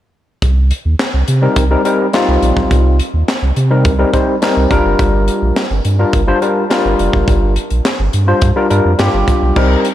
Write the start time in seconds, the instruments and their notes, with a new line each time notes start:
0.42 sub bass C2, kick, closed hi-hat
0.71 closed hi-hat
0.85 sub bass D#2
0.99 snare, clap, closed hi-hat
1.14 sub bass C2
1.28 sub bass C3, closed hi-hat
1.42 tine electric piano G3 C4 D#4 A#4
1.56 sub bass C2, kick, closed hi-hat
1.71 tine electric piano G3 C4 D#4 A#4
1.85 tine electric piano G3 C4 D#4 A#4, closed hi-hat
2.13 tine electric piano G3 C4 D#4 F4, snare, clap, closed hi-hat
2.28 sub bass C2
2.42 sub bass A#1, closed hi-hat
2.57 sub bass B1, kick
2.71 sub bass C2, kick, closed hi-hat
2.99 closed hi-hat
3.14 sub bass D#2
3.28 snare, clap, closed hi-hat
3.42 sub bass C2
3.56 sub bass C3, closed hi-hat
3.70 tine electric piano G3 C4 D#4 A#4
3.85 sub bass C2, kick, closed hi-hat
3.99 tine electric piano G3 C4 D#4 A#4
4.13 tine electric piano G3 C4 D#4 C5, kick, closed hi-hat
4.42 tine electric piano G3 C4 D#4 A#4, snare, clap, closed hi-hat
4.57 sub bass C2
4.70 sub bass G1, tine electric piano G3 D4 F4 A#4, kick, closed hi-hat
4.85 sub bass F#1
4.99 sub bass G1, kick, closed hi-hat
5.28 closed hi-hat
5.42 sub bass A#1
5.56 snare, clap, closed hi-hat
5.70 sub bass G1
5.85 sub bass G2, closed hi-hat
5.99 tine electric piano G3 D4 F4 A#4
6.13 sub bass G1, kick, closed hi-hat
6.27 tine electric piano G3 D4 F4 C5
6.42 tine electric piano G3 D4 F4 A#4, closed hi-hat
6.70 tine electric piano G3 D4 F4 A#4, snare, clap, closed hi-hat
6.85 sub bass G1
6.99 sub bass F1, closed hi-hat
7.13 sub bass F#1, kick
7.28 sub bass G1, kick, closed hi-hat
7.56 closed hi-hat
7.70 sub bass A#1, closed hi-hat
7.85 snare, clap, closed hi-hat
7.99 sub bass G1
8.13 sub bass G2, closed hi-hat
8.27 tine electric piano G3 D4 F4 C5
8.41 sub bass G2, kick, closed hi-hat
8.56 tine electric piano G3 D4 F4 A#4
8.70 sub bass G2, tine electric piano G3 D4 F4 A#4, closed hi-hat
8.85 sub bass F2
8.99 sub bass G2, tine electric piano G3 D4 F4 G4, snare, clap, closed hi-hat
9.14 sub bass G1
9.28 kick, closed hi-hat
9.42 sub bass B1
9.56 sub bass C2, tine electric piano G3 C4 D#4 A#4, kick, crash
9.85 closed hi-hat